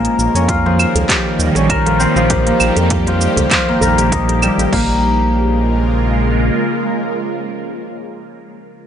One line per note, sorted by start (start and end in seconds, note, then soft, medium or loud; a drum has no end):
0.00 4.73 D#3 medium
0.00 4.73 G3 medium
0.00 2.46 A#3 medium
0.00 4.73 A#3 medium
0.00 0.15 C4 loud
0.00 1.98 D#4 medium
0.00 1.59 F4 medium
0.00 1.09 A#4 medium
0.00 4.73 A#4 medium
0.05 closed hi-hat soft
0.18 0.29 A#1 medium
0.18 shaker medium
0.35 0.86 F2 medium
0.35 1.56 C#4 medium
0.35 closed hi-hat soft
0.35 shaker soft
0.48 0.79 F4 medium
0.48 4.73 G4 medium
0.48 kick loud
0.48 closed hi-hat medium
0.48 shaker soft
0.66 1.85 F3 medium
0.66 djembe slap medium
0.79 3.32 F4 medium
0.79 claves medium
0.79 shaker medium
0.95 1.04 C#2 medium
0.95 closed hi-hat soft
0.95 djembe bass medium
0.95 shaker soft
1.09 2.30 G4 medium
1.09 kick loud
1.09 clap medium
1.09 closed hi-hat medium
1.09 djembe slap medium
1.09 shaker soft
1.39 1.50 D#2 medium
1.39 shaker medium
1.55 2.07 A#1 medium
1.55 2.06 C#4 medium
1.55 closed hi-hat soft
1.55 djembe slap medium
1.55 shaker soft
1.70 3.82 A#4 loud
1.70 kick loud
1.70 closed hi-hat medium
1.70 claves medium
1.70 shaker soft
1.86 2.15 F3 medium
1.86 closed hi-hat soft
1.86 djembe tone medium
2.00 5.00 C4 loud
2.00 shaker medium
2.16 2.52 A#1 medium
2.16 3.06 F3 loud
2.16 shaker soft
2.30 4.66 G4 medium
2.30 kick loud
2.30 closed hi-hat medium
2.30 shaker soft
2.47 3.68 A#3 medium
2.47 closed hi-hat soft
2.60 2.71 A#1 medium
2.60 claves medium
2.60 shaker medium
2.76 3.28 F2 medium
2.76 closed hi-hat soft
2.76 djembe bass medium
2.76 shaker soft
2.90 kick loud
2.90 closed hi-hat medium
2.90 shaker soft
3.07 3.50 F3 medium
3.07 closed hi-hat soft
3.07 djembe slap medium
3.21 shaker medium
3.37 3.46 C#2 medium
3.37 closed hi-hat soft
3.37 djembe tone medium
3.37 djembe bass medium
3.37 shaker soft
3.51 4.78 F3 medium
3.51 kick loud
3.51 clap medium
3.51 closed hi-hat medium
3.51 claves medium
3.51 shaker soft
3.67 4.72 A#3 medium
3.67 djembe slap medium
3.67 djembe tone soft
3.81 4.49 A#1 medium
3.81 5.94 A#4 medium
3.81 djembe bass loud
3.81 shaker medium
3.98 closed hi-hat soft
3.98 djembe tone medium
3.98 shaker soft
4.12 6.83 D#4 medium
4.12 kick loud
4.12 closed hi-hat medium
4.12 shaker soft
4.29 closed hi-hat soft
4.29 djembe tone medium
4.42 4.78 G3 medium
4.42 djembe slap soft
4.42 claves medium
4.42 shaker medium
4.58 4.67 A#1 medium
4.58 closed hi-hat soft
4.58 djembe tone medium
4.58 shaker soft
4.73 6.51 A#1 medium
4.73 7.91 C#3 medium
4.73 7.94 A#3 medium
4.73 kick loud
4.73 crash medium
4.83 7.91 G#3 medium
4.92 7.91 A#3 medium
5.01 7.91 F4 medium
5.10 7.91 A#4 medium